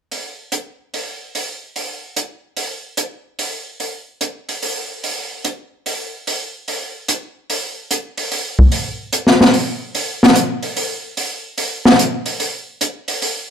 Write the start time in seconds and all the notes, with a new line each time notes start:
0.12 open hi-hat
0.52 closed hi-hat
0.94 open hi-hat
1.35 open hi-hat
1.76 open hi-hat
2.16 closed hi-hat
2.57 open hi-hat
2.97 closed hi-hat
3.39 open hi-hat
3.80 open hi-hat
4.21 closed hi-hat
4.49 open hi-hat
4.62 open hi-hat
5.04 open hi-hat
5.45 closed hi-hat
5.86 open hi-hat
6.27 open hi-hat
6.68 open hi-hat
7.08 closed hi-hat
7.50 open hi-hat
7.91 closed hi-hat
8.18 open hi-hat
8.32 open hi-hat
8.59 kick
8.72 open hi-hat
9.13 closed hi-hat
9.27 snare
9.41 snare
9.54 open hi-hat
9.95 open hi-hat
10.23 snare
10.35 closed hi-hat
10.63 open hi-hat
10.76 open hi-hat
11.17 open hi-hat
11.58 open hi-hat
11.85 snare
11.99 closed hi-hat
12.26 open hi-hat
12.40 open hi-hat
12.81 closed hi-hat
13.08 open hi-hat
13.22 open hi-hat